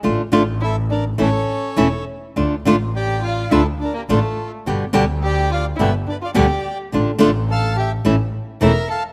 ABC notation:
X:1
M:4/4
L:1/16
Q:1/4=105
K:Dm
V:1 name="Bandoneon"
z4 [Ae]2 [Bd]2 [A^c]6 z2 | z4 [dg]2 [df]2 [Ae]2 [Bd] [GB] [FA]3 z | z4 [dg]2 [df]2 [=Be]2 [Bd] [df] [dg]3 z | z4 [fa]2 [eg]2 z4 [eb]2 [fa]2 |]
V:2 name="Violin"
z4 E2 D2 ^C6 z2 | z4 G2 F2 E2 D B, A,3 z | z4 G2 F2 E2 D F G3 z | z4 A2 G2 z4 B2 A2 |]
V:3 name="Nylon-string guitar"
[D,A,DF]2 [D,A,DF]2 z4 [E,A,^CE]2 z2 [E,A,CE]2 z2 | [D,A,DF]2 [D,A,DF]2 z4 [D,A,DF]2 z2 [D,A,DF]2 z2 | [=B,,D,G,=B,G]2 [B,,D,G,B,G]2 z4 [B,,D,G,B,G]2 z2 [B,,D,G,B,G]2 z2 | [D,A,DF]2 [D,A,DF]2 z4 [E,A,^CE]2 z2 [E,A,CE]2 z2 |]
V:4 name="Double bass" clef=bass
A,,,2 A,,,6 A,,,2 z2 E,,,2 z2 | D,,2 A,,,6 D,,2 z2 A,,,2 z2 | G,,,2 D,,6 G,,,2 z2 D,,2 z2 | A,,,2 A,,,6 A,,,2 z2 E,,,2 z2 |]